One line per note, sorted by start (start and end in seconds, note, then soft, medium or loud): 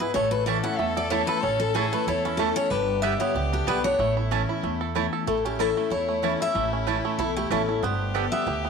0.00 0.13 G#2 medium
0.00 1.09 E3 medium
0.00 0.15 B3 medium
0.00 0.64 E4 medium
0.00 0.14 B4 medium
0.14 0.59 A1 medium
0.14 0.76 A2 medium
0.14 0.79 A3 medium
0.14 2.67 A4 loud
0.14 0.31 C#5 medium
0.31 0.46 B4 medium
0.46 0.63 E3 medium
0.46 0.64 A3 medium
0.46 0.57 A3 medium
0.46 0.64 C#4 medium
0.46 0.93 C#4 medium
0.46 0.63 E4 medium
0.46 0.57 E4 loud
0.46 0.57 C#5 loud
0.46 0.63 D5 medium
0.46 0.57 A5 loud
0.64 0.79 C#4 soft
0.64 0.78 E4 medium
0.64 1.08 E4 medium
0.64 0.78 F#5 loud
0.78 1.23 E2 medium
0.78 1.40 E2 medium
0.78 1.25 A3 medium
0.78 0.96 E5 medium
0.97 1.28 A4 medium
0.97 1.10 D5 medium
1.10 1.41 E3 medium
1.10 1.21 A3 medium
1.10 1.42 A3 medium
1.10 1.42 C#4 loud
1.10 1.21 E4 loud
1.10 1.57 E4 medium
1.10 1.42 E4 medium
1.10 1.27 C#5 medium
1.10 1.21 C#5 medium
1.10 1.21 A5 loud
1.27 1.72 A4 medium
1.27 1.42 B4 loud
1.42 1.87 A1 medium
1.42 2.04 A2 medium
1.42 1.89 C#4 medium
1.42 1.60 C#5 loud
1.60 1.74 A4 medium
1.74 2.05 E3 medium
1.74 2.05 A3 medium
1.74 1.85 A3 loud
1.74 2.06 C#4 medium
1.74 2.06 E4 loud
1.74 1.85 E4 loud
1.74 2.07 E4 medium
1.74 1.92 G#4 medium
1.74 1.85 C#5 loud
1.74 1.85 A5 loud
1.93 2.36 A3 medium
1.93 2.07 B4 medium
2.07 2.51 E2 medium
2.07 2.68 E2 medium
2.07 2.54 E4 medium
2.07 2.24 C#5 medium
2.25 2.55 C#4 medium
2.25 2.39 E4 medium
2.37 2.69 E3 medium
2.37 2.70 A3 loud
2.37 2.49 A3 medium
2.37 2.71 A3 medium
2.37 2.70 C#4 medium
2.37 2.49 E4 medium
2.37 2.70 E4 medium
2.37 2.55 A4 medium
2.37 2.49 C#5 loud
2.37 2.49 A5 medium
2.56 2.71 C#4 medium
2.56 2.70 C#5 loud
2.70 3.14 G1 loud
2.70 3.32 G2 medium
2.70 3.17 D4 medium
2.70 4.01 G4 loud
2.70 3.02 B4 medium
3.02 3.34 D3 medium
3.02 3.34 G3 medium
3.02 3.13 B3 loud
3.02 3.34 B3 medium
3.02 3.13 G4 loud
3.02 3.34 G4 medium
3.02 3.13 D5 loud
3.02 3.19 E5 loud
3.02 3.13 G5 loud
3.20 3.64 B3 medium
3.20 3.35 C#5 medium
3.35 3.62 C#2 medium
3.35 3.66 D3 medium
3.35 3.81 G4 medium
3.35 3.52 D5 loud
3.53 3.84 D4 medium
3.53 3.67 G4 medium
3.67 3.94 B1 medium
3.67 3.98 D3 medium
3.67 3.98 G3 medium
3.67 3.77 B3 medium
3.67 3.99 B3 medium
3.67 3.98 B3 loud
3.67 3.77 G4 medium
3.67 3.98 G4 medium
3.67 3.84 B4 loud
3.67 3.77 D5 medium
3.67 3.77 G5 medium
3.84 4.00 D4 medium
3.84 4.14 C#5 loud
3.99 4.43 A1 medium
3.99 4.60 A2 medium
3.99 4.45 A3 medium
3.99 5.13 E4 medium
4.17 4.48 E4 medium
4.31 4.62 E3 medium
4.31 4.41 A3 loud
4.31 4.62 A3 medium
4.31 4.77 C#4 medium
4.31 4.62 C#4 medium
4.31 4.41 E4 loud
4.31 4.62 E4 medium
4.31 4.41 C#5 loud
4.31 4.41 A5 loud
4.49 4.93 E4 medium
4.63 5.07 E2 medium
4.63 5.24 E2 medium
4.63 5.09 A3 medium
4.81 5.12 A4 medium
4.95 5.26 E3 medium
4.95 5.26 A3 medium
4.95 5.05 A3 medium
4.95 5.26 C#4 medium
4.95 5.27 E4 medium
4.95 5.05 E4 medium
4.95 5.26 E4 medium
4.95 5.05 C#5 loud
4.95 5.06 A5 loud
5.13 5.27 A4 medium
5.27 5.71 A1 medium
5.27 5.88 A2 medium
5.27 5.77 A3 medium
5.27 7.84 E4 loud
5.27 5.44 A4 medium
5.45 5.89 C#4 medium
5.45 5.60 G4 medium
5.59 5.76 E3 medium
5.59 5.69 A3 medium
5.59 5.76 A3 medium
5.59 5.76 C#4 medium
5.59 5.69 E4 medium
5.59 5.90 E4 medium
5.59 5.75 E4 medium
5.59 5.92 A4 medium
5.59 5.69 C#5 medium
5.59 5.69 A5 loud
5.76 6.07 A3 medium
5.76 5.91 C#4 soft
5.76 5.90 E4 medium
5.90 6.52 E2 medium
5.90 6.34 E2 medium
5.90 6.37 E4 medium
5.90 6.37 C#5 medium
6.09 6.52 A3 medium
6.22 6.40 E3 medium
6.22 6.40 A3 medium
6.22 6.33 A3 medium
6.22 6.69 C#4 medium
6.22 6.40 C#4 medium
6.22 6.33 E4 loud
6.22 6.39 E4 loud
6.22 6.33 C#5 medium
6.22 6.33 A5 medium
6.40 6.55 C#4 soft
6.40 6.54 E4 medium
6.40 6.84 E4 medium
6.40 6.71 E5 loud
6.55 6.99 A1 loud
6.55 7.16 A2 medium
6.55 7.01 A3 medium
6.73 7.16 C#4 medium
6.87 7.18 E3 medium
6.87 6.97 A3 loud
6.87 7.18 A3 medium
6.87 7.18 C#4 medium
6.87 6.97 E4 medium
6.87 7.18 E4 medium
6.87 6.97 C#5 medium
6.87 6.97 A5 loud
7.05 7.36 A3 medium
7.18 7.46 B1 medium
7.18 7.80 E2 medium
7.18 7.65 E4 medium
7.18 7.36 A4 medium
7.37 7.81 A3 medium
7.37 7.51 G4 medium
7.50 7.78 A1 medium
7.50 7.68 E3 medium
7.50 7.61 A3 medium
7.50 7.68 A3 medium
7.50 7.83 C#4 medium
7.50 7.68 C#4 medium
7.50 7.61 E4 medium
7.50 7.66 E4 loud
7.50 7.81 A4 medium
7.50 7.61 C#5 loud
7.50 7.61 A5 loud
7.67 7.83 C#4 soft
7.67 7.82 E4 medium
7.67 7.83 E4 medium
7.83 8.26 G1 medium
7.83 8.44 G2 medium
7.83 8.32 B3 medium
7.83 8.70 G4 loud
7.83 8.29 C5 medium
8.14 8.45 D3 medium
8.14 8.46 G3 medium
8.14 8.24 B3 medium
8.14 8.46 B3 medium
8.14 8.25 G4 loud
8.14 8.46 G4 medium
8.14 8.61 A4 medium
8.14 8.25 D5 medium
8.14 8.25 G5 medium
8.32 8.63 B3 medium
8.32 8.62 E5 loud
8.46 8.70 D2 medium
8.46 8.70 D3 medium
8.46 8.70 G4 medium
8.65 8.70 B3 medium